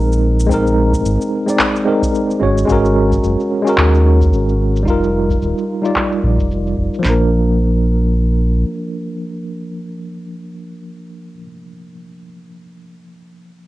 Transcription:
Already playing: analog synth bass A#1, tine electric piano G#3 C4 D#4 A#4
0.12 shaker
0.40 shaker
0.47 tine electric piano G#3 C4, kick
0.51 tine electric piano D#4 A#4, shaker
0.67 shaker
0.93 kick, shaker
1.05 analog synth bass G#1, shaker
1.21 shaker
1.46 tine electric piano G#3 C4 D#4 D5, shaker
1.59 kick, clap, shaker
1.76 shaker
1.85 tine electric piano G#3 C4 D#4 A#4
2.02 kick, shaker
2.15 shaker
2.31 shaker
2.39 analog synth bass G#1, tine electric piano G#3 C#4 F#4 C#5, kick
2.58 shaker
2.65 analog synth bass G#1, tine electric piano G#3 C#4, kick
2.69 tine electric piano F#4 A#4, shaker
2.85 shaker
3.12 kick, shaker
3.23 analog synth bass F#1, shaker
3.40 shaker
3.62 tine electric piano G#3 C#4
3.67 tine electric piano F#4 A#4, shaker
3.78 analog synth bass D#2, kick, clap, shaker
3.94 shaker
4.21 kick, shaker
4.32 analog synth bass G#1, shaker
4.49 shaker
4.76 shaker
4.83 analog synth bass F1, tine electric piano G3 D#4, kick
4.88 tine electric piano F4 A#4, shaker
5.03 shaker
5.30 kick, shaker
5.41 analog synth bass D#1, shaker
5.58 shaker
5.82 tine electric piano G3 D#4 F4 D5, shaker
5.96 kick, clap, shaker
6.12 shaker
6.23 analog synth bass A#1
6.39 analog synth bass F1, kick, shaker
6.51 shaker
6.67 shaker
6.78 analog synth bass F1, kick
6.94 shaker
6.99 tine electric piano F3 A#3
7.05 analog synth bass A#1, tine electric piano D4, snare, clap
7.10 tine electric piano A#4

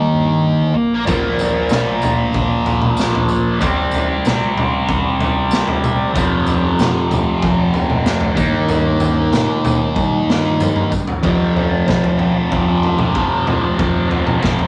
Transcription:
Already playing: distorted electric guitar D#3 A#3 D#4
0.12 fingered electric bass G2
0.60 fingered electric bass D2
0.75 fingered electric bass C2
0.90 fingered electric bass A#1
1.05 fingered electric bass A#1, distorted electric guitar A#2 F3 A#3, kick, floor tom, tambourine
1.39 floor tom, tambourine
1.69 snare, mid tom, tambourine
2.02 floor tom, mid tom, tambourine
2.33 fingered electric bass A#2, kick, floor tom, tambourine
2.66 fingered electric bass A#1, floor tom, tambourine
2.82 mid tom
2.97 snare, tambourine
3.15 floor tom
3.28 tambourine
3.60 fingered electric bass C2, distorted electric guitar C3 G3 C4, kick, floor tom, tambourine
3.91 floor tom, tambourine
4.25 snare, mid tom, tambourine
4.58 floor tom, mid tom
4.88 fingered electric bass C3, kick, floor tom, tambourine
5.19 fingered electric bass C2, floor tom, tambourine
5.51 snare, tambourine
5.68 floor tom
5.84 mid tom, tambourine
6.13 distorted electric guitar F2 C3 F3, fingered electric bass F2, kick, floor tom, tambourine
6.46 floor tom, tambourine
6.79 snare, mid tom, tambourine
7.11 floor tom, mid tom, tambourine
7.42 fingered electric bass F3, kick, floor tom, tambourine
7.74 fingered electric bass F2, floor tom, tambourine
7.90 mid tom
8.06 snare, tambourine
8.21 floor tom
8.36 fingered electric bass G2, distorted electric guitar D#3 A#3 D#4, kick, tambourine
8.69 floor tom, tambourine
9.00 floor tom, tambourine
9.33 snare, mid tom, tambourine
9.65 floor tom, mid tom, tambourine
9.96 fingered electric bass G3, kick, high tom, tambourine
10.27 fingered electric bass G2, snare, tambourine
10.60 mid tom, tambourine
10.76 mid tom
10.92 kick, tambourine
11.07 floor tom
11.23 distorted electric guitar F2 C3 F3, fingered electric bass F2, kick, floor tom
11.56 distorted electric guitar F2 C3 F3, floor tom
11.71 distorted electric guitar C3 F3
11.87 distorted electric guitar F2 C3 F3, kick, snare, mid tom
12.04 floor tom
12.18 distorted electric guitar F2 C3 F3, floor tom
12.35 distorted electric guitar C3 F3
12.51 distorted electric guitar F2 C3 F3, fingered electric bass F2, kick, floor tom
12.66 distorted electric guitar C3 F3
12.83 floor tom
12.98 distorted electric guitar C3 F3, floor tom, mid tom
13.14 distorted electric guitar F2 C3 F3, kick
13.46 distorted electric guitar F2 C3 F3, floor tom, mid tom
13.62 distorted electric guitar C3 F3
13.77 distorted electric guitar F2 C3 F3, fingered electric bass F2, kick, floor tom
14.08 distorted electric guitar F2 C3 F3, floor tom
14.24 distorted electric guitar C3 F3, mid tom
14.40 distorted electric guitar F2 C3 F3, kick, snare, mid tom
14.59 floor tom

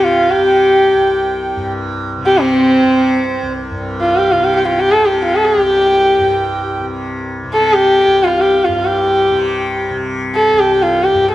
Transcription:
Already playing: tanpura C2 G2 C3, harmonium G5
0.04 sarangi F4
0.18 harmonium F5
0.30 tanpura C3, sarangi G4
0.42 harmonium G5
0.95 tanpura C2
1.56 tanpura G2
2.18 tanpura C3
2.26 sarangi G4
2.38 sarangi C4, harmonium G5
2.53 harmonium C5
2.81 tanpura C3
3.42 tanpura C2
3.71 tanpura G2
4.01 sarangi F4
4.14 sarangi G4, harmonium F5
4.32 tanpura C3, sarangi F4
4.44 sarangi G4
4.56 sarangi G4, harmonium G5
4.68 sarangi F4
4.80 sarangi G4
4.92 tanpura C3, sarangi A4
5.05 sarangi G4
5.17 harmonium G5
5.25 sarangi F4
5.35 sarangi A4
5.46 sarangi G#4
5.56 tanpura C2, harmonium G5
5.61 sarangi G4
6.18 tanpura G2
6.80 tanpura C3
7.44 tanpura C3
7.54 sarangi A4
7.65 harmonium A5
7.74 sarangi G4
7.86 harmonium G5
8.06 tanpura C2
8.23 sarangi F4
8.37 sarangi G4, harmonium F5
8.64 tanpura G2, sarangi F4
8.77 harmonium F5
8.85 sarangi G4
8.98 harmonium G5
9.30 tanpura C3
9.90 tanpura C3
10.35 sarangi A4
10.46 harmonium A5
10.52 tanpura C2
10.59 sarangi G4
10.71 harmonium G5
10.83 sarangi F4
11.04 sarangi G4
11.13 tanpura G2, harmonium G5
11.32 sarangi A4

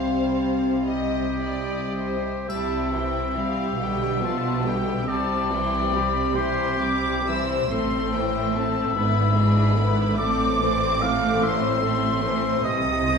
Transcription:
Already playing: double bass section C2, cello section C3, viola section G3, clarinet C4, violin section C5 F5
0.86 oboe G4, violin section D#5
1.42 violin section D5
1.99 violin section C5
2.49 double bass section C2, cello section C3, viola section G3, violin section E4 G4 A5, oboe E5, triangle
2.94 viola section E3, violin section C4 E4 G5
3.37 viola section G3, violin section E4 G4 F5
3.79 double bass section B1, cello section B2, viola section D3 G3, violin section B3 G4 G5
4.22 viola section F3 B3, violin section D4 F4 A5
4.64 viola section D3 G3, violin section B3 G4 G5
5.08 double bass section C2, cello section C3, viola section G3 C4, violin section G4 A5, oboe D5
5.51 viola section E3 G3, violin section E4 C5 G5
5.93 viola section G3 C4, violin section G4 B5
6.35 viola section E3 G3, violin section E4 C5 C6, oboe G4
6.79 viola section G3 C4, violin section G4 D6
7.26 viola section E3 G3, violin section E4 C5 E6
7.71 double bass section A1, cello section A2, viola section A3 C4, violin section C4 A4 C6, oboe E5
8.14 viola section E3 A3, violin section E4 C5 G5
8.55 viola section A3 C4, violin section C4 A4 A5
8.95 double bass section G#1, cello section G#2, viola section D3 B3, violin section E4 B4 B5
9.36 viola section E3 G#3, violin section D4 G#4
9.76 viola section D3 B3, violin section E4 B4
10.18 double bass section A1, cello section A2, viola section A3 C4, violin section A3 A4 D6, oboe D5
10.60 viola section E3 A3, violin section C4 C5
11.02 viola section A3 C4, violin section A3 A4, oboe F5
11.43 viola section E3 A3, violin section C4 C5 C6, oboe E5
11.83 viola section A3 C4, violin section A3 A4
12.24 viola section E3 A3, violin section C4 C5
12.64 double bass section C2, cello section C3, oboe D#5, violin section D#6
13.07 viola section D#3 C4, violin section C4 G4

